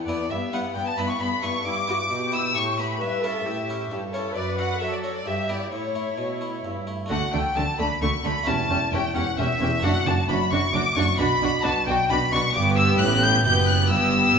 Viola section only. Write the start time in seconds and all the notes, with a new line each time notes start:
0.08 B3
0.31 B3
0.53 B3
0.76 B3
0.98 B3
1.21 B3
1.43 B3
1.66 E4
1.89 F#4
2.11 G4
3.01 B4
3.24 A4
3.46 G4
3.91 G4
4.14 A4
4.36 B4
4.81 A4
5.26 G4
5.72 E4
7.10 A3
7.34 A3
7.56 A3
7.78 A3
8.02 A3
8.25 A3
8.47 C#4
8.70 C#4
8.93 C#4
9.15 C#4
9.38 C#4
9.60 C#4
9.84 D4
10.06 D4
10.29 D4
10.52 D4
10.74 D4
10.96 D4
11.19 D4
11.42 D4
11.64 D4
11.87 D4
12.11 D4
12.33 D4
12.56 B3
13.46 B3
13.91 B3